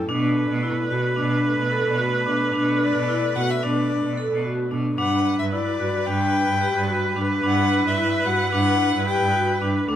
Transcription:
Already playing: B3
0.08 B2 A3 D4 B4
0.49 B2
0.63 E4
0.90 B2 F#4
1.16 B2 D4
1.59 B2
1.72 A4
1.86 B2
1.98 F#4
2.26 B2 D4
2.53 B2 D4
2.82 D5
2.95 B2
3.08 E4
3.35 B2 F#4 F#5
3.50 E5
3.63 B2 D4 D5
4.04 B2
4.17 A4
4.30 B2
4.45 F#4
4.71 B2 D4
4.97 G2 F#3 G3 D4 B4 F#5
5.39 G2 E5
5.52 E4 D5
5.80 G2 F#4
6.07 G2 D4 G5
6.48 G2
6.61 G4
6.75 G2
6.89 F#4
7.16 G2 D4
7.42 G2 D4 E4
7.47 F#5
7.84 G2 E5
7.98 E4
8.25 G2 F#4 F#5
8.52 G2 D4 F#5
8.93 G2
9.07 G4 G5
9.21 G2
9.34 F#4
9.62 G2 D4
9.87 D2 D3 D4 F#4 A4

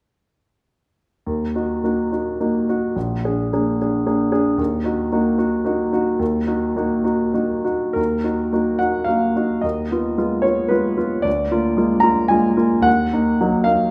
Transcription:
1.26 D#2
1.55 D#4 F#4
1.84 A#3 D#4 F#4
2.12 D#4 F#4
2.40 A#3 D#4 F#4
2.69 D#4 F#4
2.96 A#1
3.24 D4 G#4
3.53 A#3 D4 G#4
3.81 D4 G#4
4.06 A#3 D4 G#4
4.32 D4 G#4
4.58 D#2
4.84 D#4 F#4
5.12 A#3 D#4 F#4
5.38 D#4 F#4
5.65 A#3 D#4 F#4
5.93 D#4 F#4
6.19 D#2
6.47 D#4 F#4
6.76 A#3 D#4 F#4
7.04 D#4 F#4
7.34 A#3 D#4 F#4
7.65 D#4 F#4
7.93 D#2 A#4
8.24 D#4 F#4
8.52 A#3 D#4 F#4
8.79 D#4 F#4 F#5
9.04 A#3 D#4 F#4 F5
9.36 D#4 F#4
9.61 D#2 D#5
9.91 B3 F4
10.18 G#3 B3 F4
10.42 B3 F4 C#5
10.68 G#3 B3 F4 B4
10.98 B3 F4
11.22 D2 D5
11.52 A#3 F4
11.77 G#3 A#3 F4
12.00 A#3 F4 A#5
12.28 G#3 A#3 F4 G#5
12.57 A#3 F4
12.81 D#2 F#5
13.13 A#3 D#4
13.41 F#3 A#3 D#4
13.64 A#3 D#4 F5

